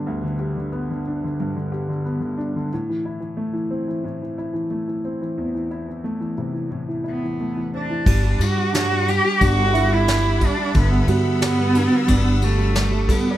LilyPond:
<<
  \new Staff \with { instrumentName = "String section" } { \time 4/4 \key g \major \tempo 4 = 90 << { r1 | r1 | r1 | d'''1 |
e'''1 | } \\ { r1 | r1 | r1 | <g fis'' b''>1~ |
<g fis'' b''>1 | } >> }
  \new Staff \with { instrumentName = "Felt piano" } { \time 4/4 \key g \major r1 | r1 | r1 | r4 d'4. e'4.~ |
e'8 fis'4 d'2 a'16 d''16 | }
  \new Staff \with { instrumentName = "Cello" } { \time 4/4 \key g \major r1 | r1 | r2 r8 b4 d'8~ | d'8 fis'8 fis'8 g'8 fis'8. e'8. d'8 |
b8 b2 a4 b8 | }
  \new Staff \with { instrumentName = "Grand piano" } { \clef bass \time 4/4 \key g \major <d, g, d b d' g'>16 d16 g'16 d16 b16 d16 d'16 d16 g,16 d16 g'16 d16 b16 d16 d'16 d16 | a,16 e16 e'16 e16 a16 e16 c'16 e16 a,16 e16 e'16 e16 a16 e16 c'16 e16 | e,16 e16 e'16 e16 a16 e16 c16 e16 a,16 e16 e'16 e16 a16 e16 c'16 e16 | g16 g16 g16 g16 g16 g16 g16 g16 d'16 g16 g16 g16 g16 g16 g16 g16 |
d16 g16 g16 g16 g16 g16 g16 g16 d'16 g16 g16 g16 g16 g16 g16 g16 | }
  \new Staff \with { instrumentName = "Upright bass" } { \clef bass \time 4/4 \key g \major r1 | r1 | r1 | g,,8 g,4. g,,2 |
g,,8 g,4. g,,2 | }
  \new DrumStaff \with { instrumentName = "Drums" } \drummode { \time 4/4 r4 r4 r4 r4 | r4 r4 r4 r4 | r4 r4 r4 r4 | <cymc bd>8 cymr8 <cymr sn>8 cymr8 <bd cymr>8 cymr8 <cymr sn>8 <bd cymr>8 |
<bd cymr>8 cymr8 <cymr sn>8 cymr8 <bd cymr>8 cymr8 <cymr sn>8 <bd cymr>8 | }
>>